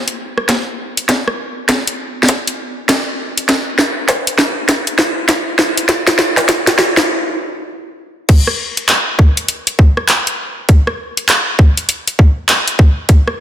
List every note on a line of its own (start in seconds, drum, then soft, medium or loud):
0.08 closed hi-hat soft
0.38 cross-stick medium
0.49 kick medium
0.49 snare medium
0.49 closed hi-hat medium
0.97 closed hi-hat medium
1.09 kick medium
1.09 snare medium
1.09 closed hi-hat medium
1.28 cross-stick medium
1.69 kick loud
1.69 snare medium
1.69 closed hi-hat medium
1.87 closed hi-hat medium
2.23 snare medium
2.29 kick medium
2.29 closed hi-hat medium
2.47 closed hi-hat soft
2.89 kick medium
2.89 snare medium
2.89 closed hi-hat medium
3.38 closed hi-hat medium
3.49 kick loud
3.49 snare medium
3.49 closed hi-hat medium
3.79 snare medium
4.09 kick loud
4.09 snare medium
4.09 closed hi-hat medium
4.27 closed hi-hat medium
4.38 snare medium
4.69 kick loud
4.69 snare medium
4.69 closed hi-hat medium
4.87 closed hi-hat soft
4.99 snare medium
5.29 kick loud
5.29 snare medium
5.29 closed hi-hat medium
5.59 snare medium
5.77 closed hi-hat medium
5.89 kick loud
5.89 snare medium
5.89 closed hi-hat medium
6.07 snare medium
6.07 closed hi-hat soft
6.19 snare medium
6.37 snare medium
6.49 kick loud
6.49 snare medium
6.49 closed hi-hat medium
6.67 snare medium
6.67 closed hi-hat medium
6.79 snare loud
6.97 snare medium
8.29 kick loud
8.29 closed hi-hat medium
8.29 crash loud
8.47 cross-stick medium
8.77 closed hi-hat soft
8.89 clap loud
8.89 closed hi-hat medium
9.19 kick loud
9.19 cross-stick medium
9.37 closed hi-hat medium
9.48 closed hi-hat medium
9.67 closed hi-hat medium
9.79 kick loud
9.97 cross-stick medium
10.09 clap loud
10.09 closed hi-hat medium
10.27 closed hi-hat soft
10.69 kick loud
10.69 closed hi-hat medium
10.87 cross-stick medium
11.17 closed hi-hat soft
11.29 clap loud
11.29 closed hi-hat medium
11.59 kick loud
11.77 closed hi-hat medium
11.89 closed hi-hat medium
12.08 closed hi-hat medium
12.19 kick medium
12.49 clap loud
12.49 closed hi-hat medium
12.68 closed hi-hat soft
12.79 kick loud
13.09 kick loud
13.09 closed hi-hat medium
13.28 cross-stick medium